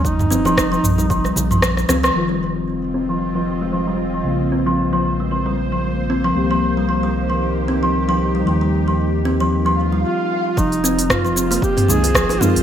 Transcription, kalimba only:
X:1
M:4/4
L:1/16
Q:"Swing 16ths" 1/4=114
K:Fm
V:1 name="Kalimba" clef=bass
z2 C F, z F,2 G, F, G, z F,3 C F, | F, G, z F,3 C F, z F,2 A, F, G, z F, | z2 C F, z F,2 A, F, G, z F,3 C F, | z F,2 G, F, G, z F,3 C F, z F,2 G, |
F, G, z F,3 C F, z F,2 G, z4 | F,2 C3 F, C B, z C E,2 F,2 C2 |]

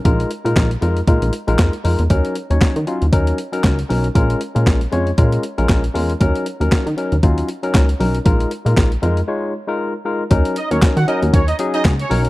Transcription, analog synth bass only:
X:1
M:4/4
L:1/16
Q:"Swing 16ths" 1/4=117
K:Ebm
V:1 name="Analog synth bass" clef=bass
B,,,2 z B,, B,,,2 F,,2 B,, B,,, z B,,, F,, z F,, _F,, | E,, z2 E,, z E, z E,, E,,2 z2 D,,2 C,,2 | B,,,2 z B,, B,,,2 F,,2 B,,2 z B,,, B,,,2 _F,,2 | E,, z2 E,, z E, z E,, E,,2 z2 D,,2 C,,2 |
B,,,2 z B,, B,,,2 F,,2 z8 | E,, z2 E,, E, E, z E,, E,,2 z2 D,,2 C,,2 |]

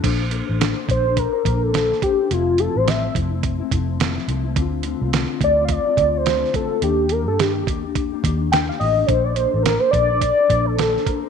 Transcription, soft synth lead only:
X:1
M:4/4
L:1/16
Q:"Swing 16ths" 1/4=106
K:Bblyd
V:1 name="Soft synth lead"
z6 c2 B3 A3 G2 | F2 A c e2 z8 z2 | z6 d3/2 f/2 d3 c3 A2 | G2 B A G2 z6 g f _e2 |
c d c2 B c d4- d A3 B2 |]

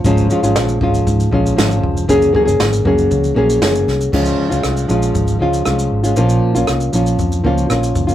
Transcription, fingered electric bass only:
X:1
M:4/4
L:1/16
Q:1/4=118
K:Db
V:1 name="Fingered electric bass" clef=bass
A,,,2 z A,,, B,,,2 A,,,2 A,,2 B,,,2 A,,,2 F,,,2 | G,,,2 z G,,, A,,,2 G,,,2 D,,2 B,,,2 G,,,2 C,,2 | D,,2 z D,, C,,2 B,,,2 A,,,2 D,,2 C,,2 A,,,2 | B,,,2 z B,,, C,,2 B,,,2 F,,2 D,,2 B,,,2 G,,,2 |]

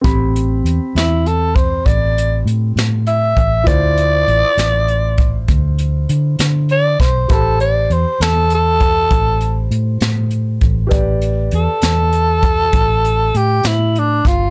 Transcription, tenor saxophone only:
X:1
M:12/8
L:1/8
Q:3/8=66
K:Am
V:1 name="Tenor saxophone"
z3 E A c d2 z2 e2 | d6 z4 d c | A d c A A4 z4 | z2 A6 G E D F |]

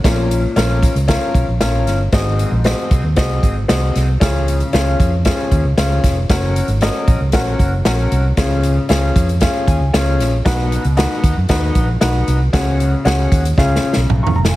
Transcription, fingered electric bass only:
X:1
M:4/4
L:1/16
Q:1/4=115
K:C#mix
V:1 name="Fingered electric bass" clef=bass
A,,,4 A,,,3 C,,2 z B,,, A,,, A,,,2 =G,,,2 | G,,,3 A,,,2 z ^B,,, D,, z2 G,,,2 B,,,2 B,,,2 | C,,4 C,,2 E,,3 z D,, C,, C,,2 E,,,2 | F,,,3 G,,,2 z A,,, C,, A,,,2 F,,,2 A,,,2 ^B,,,2 |
C,,4 C,,2 E,,3 z D,, C,, C,,2 A,,,2 | B,,,3 C,,2 z D,, F,, D,,2 A,,,2 B,,,2 ^B,,,2 | C,,4 C,,2 D,,2 C,,2 z B,,, B,,, z E,,,2 |]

